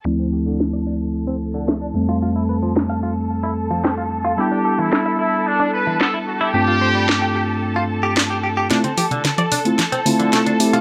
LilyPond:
<<
  \new Staff \with { instrumentName = "String section" } { \time 4/4 \key d \dorian \tempo 4 = 111 <a' a''>1~ | <a' a''>1~ | <a' a''>1~ | <a' a''>1 |
<a' a''>1 | }
  \new Staff \with { instrumentName = "Trumpet section" } { \time 4/4 \key d \dorian r1 | r1 | g'8. e'8. e'8 d'8 b'8 a'8 g'8~ | g'2~ g'8 r4. |
r1 | }
  \new Staff \with { instrumentName = "Clean electric guitar" } { \time 4/4 \key d \dorian d'16 c'16 g'16 d16 r16 d''16 d'16 r8 c'16 r16 d16 a16 d'16 r16 f'16 | f'16 e'16 b'16 f16 r16 f''16 f'16 r8 e'16 r16 f16 c'16 f'16 r16 f'16 | e'16 d'16 a'16 e16 r16 e''16 e'16 r8 d'16 r16 e16 b16 e'16 r16 e'16 | g'16 f'16 c''16 g16 r16 g''16 g'16 r8 f'16 r16 g'16 d''16 g'16 g'16 g'16 |
d'16 c'16 g'16 d16 r16 d''16 d'16 r8 c'16 r16 d16 a16 d'16 r16 f'16 | }
  \new Staff \with { instrumentName = "Tine electric piano" } { \time 4/4 \key d \dorian <d, f a c' e'>2.~ <d, f a c' e'>8 <f, g a c'>8~ | <f, g a c'>1 | <g b d' e'>1 | <g, a c' d' f'>1 |
<a c' e' f'>16 r4. <a c' e' f'>16 r8 <a c' e' f'>4 <a c' e' g'>16 r16 | }
  \new Staff \with { instrumentName = "Synth arpeggio sound" } { \clef bass \time 4/4 \key d \dorian r1 | r1 | r1 | r1 |
c16 d16 f16 c16 d16 f16 c16 d16 f16 c16 d16 f16 c16 d16 f16 c16 | }
  \new DrumStaff \with { instrumentName = "Drums" } \drummode { \time 4/4 r4 sn4 r4 sn4 | r4 sn4 r4 sn4 | r4 sn4 r4 sn4 | r4 sn4 r4 sn4 |
<hh sn>16 hh16 hho16 hh16 <hh sn>16 hh16 hho16 hh16 <hh sn>16 hh16 hho16 hh16 <hh sn>16 hh16 hho16 hh16 | }
>>